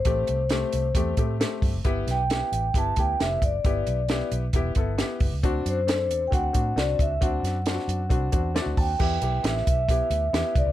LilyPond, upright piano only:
\new Staff \with { instrumentName = "Upright piano" } { \time 4/4 \key g \major \tempo 4 = 134 << { r1 | r1 | r1 | r1 |
r2. d''8 a''8 | r1 | } \\ { <a c' g'>8. r16 <a c' g'>8. r16 <a c' g'>8 <a c' g'>8 <a c' g'>8. r16 | <b e' g'>8. r16 <b e' g'>8. r16 <b e' g'>8 <b e' g'>8 <b e' g'>8. r16 | <b e' g'>8. r16 <b e' g'>8. r16 <b e' g'>8 <b e' a'>8 <b e' g'>8. r16 | <c' d' fis'>8. r16 <c' d' a'>8. r16 <c' d' fis'>8 <c' d' fis'>8 <c' d' fis'>8. r16 |
<c' d' fis'>8. r16 <c' d' f' fis'>8. r16 <c' d' fis'>8 <c' d' fis'>8 <c' d' e' fis'>8. r16 | <b e' g'>8 <b e' g'>8 <b e' g'>8. r16 <b e' g'>8. r16 <b e' g'>8. r16 | } >> }